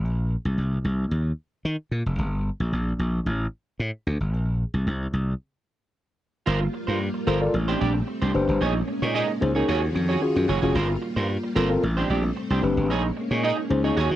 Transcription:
0.05 A#1
0.45 C2
0.58 C2
0.84 C2
1.11 D#2
1.65 D#3
1.91 A#2
2.06 F1
2.19 G1
2.60 A#1
2.73 A#1
2.99 A#1
3.26 A1
3.80 A2
4.07 D2
4.20 G1
4.33 A#1
4.74 C2
4.87 C2
5.13 C2
6.46 G1 G3 A#3 F4 A#4 C5
6.61 muted clean electric guitar stroke
6.73 muted clean electric guitar stroke
6.87 G2 F4 A#4 C5
7.00 muted clean electric guitar stroke
7.14 muted clean electric guitar stroke
7.27 G1 F4 A4 A#4 C5
7.41 F4 A4 A#4 D5, muted clean electric guitar stroke
7.53 A1 A3 C4, muted clean electric guitar stroke
7.68 D4 G4 C5
7.80 A#1 D4 G4 D5
7.94 muted clean electric guitar stroke
8.07 muted clean electric guitar stroke
8.22 C2 D4 G4 C5
8.34 F#1 D4 G4 B4 C5, muted clean electric guitar stroke
8.48 G1, muted clean electric guitar stroke
8.61 A#1 G#3 A#3 C#4 D#4 G#4 C#5
8.75 muted clean electric guitar stroke
8.88 muted clean electric guitar stroke
9.02 A#2 D#4 G#4 C#5
9.14 D#4 G#4 D#5
9.29 muted clean electric guitar stroke
9.41 C#2 C#4 D#4 G#4 C5, muted clean electric guitar stroke
9.55 C#4 D#4 G#4 A#4 C#5
9.68 D#2 D#3 C#4 F4 F#4 G#4 C#5
9.82 muted clean electric guitar stroke
9.95 F2, muted clean electric guitar stroke
10.09 F#4 G#4 C#5
10.21 C#4 F4 F#4 G#4, muted clean electric guitar stroke
10.36 F#2, muted clean electric guitar stroke
10.48 F#1 F#4 G#4 C#5
10.62 F1 C#4 F4 F#4 G#4 C#5
10.75 G1 G3 A#3 F4 A#4 C5
10.89 muted clean electric guitar stroke
11.02 muted clean electric guitar stroke
11.16 G2 F4 A#4 C5
11.29 muted clean electric guitar stroke
11.44 muted clean electric guitar stroke
11.55 G1 C4 F4 A4 A#4 C5
11.69 C4 F4 A4 A#4, muted clean electric guitar stroke
11.83 A1 A3 C4, muted clean electric guitar stroke
11.97 D4 G4 C5
12.10 A#1 D4 G4 D5
12.24 muted clean electric guitar stroke
12.36 muted clean electric guitar stroke
12.50 C2 D4 G4 C5
12.63 F#1 C4 D4 G4 B4, muted clean electric guitar stroke
12.77 G1, muted clean electric guitar stroke
12.90 A#1 G#3 A#3 C#4 D#4 G#4 C#5
13.04 muted clean electric guitar stroke
13.17 muted clean electric guitar stroke
13.31 A#2 D#4 G#4 C#5
13.43 D#4 G#4 D#5
13.58 muted clean electric guitar stroke
13.70 C#2 C#4 D#4 G#4 C5, muted clean electric guitar stroke
13.84 C#4 D#4 G#4 C#5 D#5
13.96 D#2 D#3 F4 F#4 G#4 C#5
14.11 D#3, muted clean electric guitar stroke

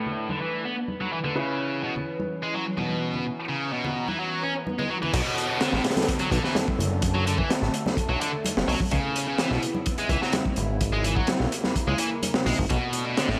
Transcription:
Already playing: A2 A3 D4 F#4 A4 B4
0.06 low conga
0.29 D3, high conga
0.41 E3
0.65 B3
0.88 high conga
1.01 F#3, high conga
1.13 E3
1.24 D3, low conga
1.36 C#3 E3 C#4 E4 G#4 B4
1.83 B2
1.96 low conga
2.20 high conga
2.43 G#3
2.54 F#3
2.77 B2, high conga
2.89 high conga
3.14 low conga
3.25 A#5
3.49 C#3
3.72 B2
3.84 low conga
4.08 E3, high conga
4.19 F#3, swell
4.43 C#4
4.67 high conga
4.79 G#3, high conga, low conga
4.90 F#3
5.02 E3, low conga
5.13 B1 B2 D3 B3 A4, kick, closed hi-hat, crash, downlifter
5.38 closed hi-hat
5.50 B2
5.61 D3, snare, closed hi-hat
5.73 A1 A2, snare
5.84 snare, closed hi-hat
5.90 snare, closed hi-hat
5.97 snare, closed hi-hat, high conga
6.02 snare, closed hi-hat
6.09 kick, closed hi-hat
6.19 F#3, closed hi-hat
6.31 B1 D3, kick, closed hi-hat
6.44 E3, snare
6.55 snare, closed hi-hat, high conga
6.68 kick, high conga
6.79 F#1, closed hi-hat, low conga
7.02 A3, kick, closed hi-hat
7.15 F#3
7.26 D3, closed hi-hat
7.38 E3, kick
7.50 snare, closed hi-hat
7.62 A1, snare
7.74 closed hi-hat
7.86 snare, high conga
7.97 kick, closed hi-hat
8.09 B1 F#3
8.21 D3, closed hi-hat
8.44 closed hi-hat, high conga
8.56 F#1, snare, high conga
8.68 B1 F#3, open hi-hat
8.80 kick
8.91 C#2 C#3 B3 E4, kick, closed hi-hat
9.16 closed hi-hat
9.28 C#3
9.38 E3, snare, closed hi-hat
9.51 B1 B2, snare
9.63 closed hi-hat
9.75 high conga
9.86 kick, closed hi-hat
9.98 G#3, closed hi-hat
10.09 C#2 E3, kick, closed hi-hat
10.22 F#3, snare
10.33 snare, closed hi-hat, high conga
10.45 kick, high conga
10.56 G#1, closed hi-hat, low conga
10.81 A#3, kick, closed hi-hat
10.93 G#3
11.04 E3, closed hi-hat
11.16 F#3, kick
11.27 snare, closed hi-hat
11.40 B1, snare
11.52 closed hi-hat
11.64 snare, high conga
11.76 kick, closed hi-hat
11.87 C#2 G#3
11.98 E3, closed hi-hat
12.23 closed hi-hat, high conga
12.34 snare, high conga
12.46 B1 G#3, open hi-hat
12.59 G#1, kick
12.70 B1 B2 A3 D4, kick, closed hi-hat
12.93 closed hi-hat
13.06 B2
13.17 D3, snare, closed hi-hat
13.29 A1 A2, snare

